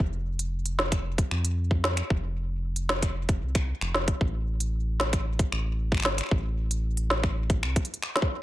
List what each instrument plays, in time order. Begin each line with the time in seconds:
0.00 analog synth bass F1, kick
0.39 closed hi-hat
0.66 closed hi-hat
0.79 snare
0.92 finger snap, kick, closed hi-hat
1.18 kick, closed hi-hat
1.31 analog synth bass F2, finger snap
1.45 closed hi-hat
1.71 kick
1.84 snare
1.97 finger snap, closed hi-hat
2.10 analog synth bass F1, kick
2.76 closed hi-hat
2.89 snare
3.02 finger snap, kick, closed hi-hat
3.29 kick, closed hi-hat
3.42 analog synth bass C2
3.55 finger snap, kick, closed hi-hat
3.81 analog synth bass F1, finger snap
3.94 snare
4.08 kick, closed hi-hat
4.21 analog synth bass A1, kick
4.60 closed hi-hat
5.00 snare
5.13 finger snap, kick, closed hi-hat
5.39 kick, closed hi-hat
5.52 analog synth bass A1, finger snap
5.92 finger snap, kick
5.95 finger snap
5.97 finger snap
6.00 finger snap
6.02 analog synth bass G1, finger snap, snare
6.18 finger snap, closed hi-hat
6.21 finger snap
6.23 finger snap
6.26 finger snap
6.29 analog synth bass A1, finger snap, kick
6.71 closed hi-hat
6.97 closed hi-hat
7.10 snare
7.23 finger snap, kick
7.50 kick, closed hi-hat
7.63 analog synth bass C2, finger snap
7.76 kick, closed hi-hat
7.85 closed hi-hat
7.94 closed hi-hat
8.03 finger snap
8.16 snare
8.22 kick